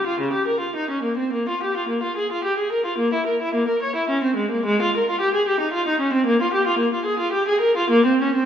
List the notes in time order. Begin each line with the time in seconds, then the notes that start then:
0.07 F4
0.20 C#3
0.33 G4
0.47 A#4
0.60 F4
0.76 D#4
0.90 C#4
1.03 A#3
1.17 C4
1.33 A#3
1.49 F4
1.63 G4
1.77 F4
1.89 A#3
2.03 F4
2.17 G#4
2.32 F4
2.44 G4
2.58 G#4
2.72 A#4
2.86 F4
2.98 A#3
3.14 E4
3.27 A#4
3.42 E4
3.54 A#3
3.68 A#4
3.82 C#5
3.96 E4
4.10 C#4
4.24 C4
4.36 G#3
4.51 A#3
4.66 G#3
4.82 F4
4.97 A#4
5.10 F4
5.21 G4
5.34 G#4
5.48 G4
5.60 D#4
5.73 F4
5.88 D#4
6.00 C#4
6.13 C4
6.26 A#3
6.42 F4
6.54 G4
6.67 F4
6.79 A#3
6.94 F4
7.06 G#4
7.19 F4
7.33 G4
7.49 G#4
7.61 A#4
7.77 F4
7.90 A#3
8.06 C4
8.22 C#4
8.35 C4